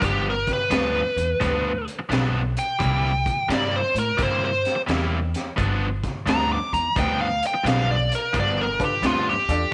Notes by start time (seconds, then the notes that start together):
0.00 G1 G2 F3 B3 D4, kick, closed hi-hat
0.04 G4
0.30 A#4
0.47 kick, snare, closed hi-hat
0.53 B4
0.70 D2 G2 F3 B3 D4, snare, closed hi-hat
1.16 E2, closed hi-hat
1.40 D2 G2 F3 B3 D4, kick, snare, closed hi-hat
1.88 closed hi-hat
1.99 muted overdriven electric guitar stroke
2.09 B1 G2 F3 B3 D4, snare, closed hi-hat
2.57 G5, closed hi-hat
2.79 C2 C3 G3 A#3 E4, kick, closed hi-hat
3.26 kick, closed hi-hat
3.48 G2 C3 G3 A#3 E4, snare, closed hi-hat
3.54 D5
3.76 C5
3.94 A2, closed hi-hat
3.99 A#4
4.18 G2 C3 G3 A#3 E4, kick, closed hi-hat
4.23 C5
4.45 C5
4.65 snare, closed hi-hat
4.75 muted overdriven electric guitar stroke
4.87 E2 C3 G3 A#3 E4, snare, closed hi-hat
5.34 snare, closed hi-hat
5.56 G1 G2 F3 B3 D4, kick, closed hi-hat
6.04 kick, snare, closed hi-hat
6.26 D2 G2 F3 B3 D4 A#5, snare, closed hi-hat
6.53 D6
6.72 E2 A#5, closed hi-hat
6.96 D2 G2 F3 B3 D4 G5, kick, snare, closed hi-hat
7.21 F5
7.43 G5, closed hi-hat
7.54 muted overdriven electric guitar stroke
7.64 B1 G2 F3 B3 D4 F5, closed hi-hat
7.68 snare
7.91 D5
8.12 A#4, closed hi-hat
8.33 G1 G2 F3 B3 D4, kick, closed hi-hat
8.40 D5
8.61 A#4
8.80 D4 F4 A4 B4, kick, closed hi-hat
8.85 G4
9.02 D2 G2 F3 B3 D4 F4, snare, closed hi-hat
9.29 G4
9.48 E2 D4 F4 A4 D5, closed hi-hat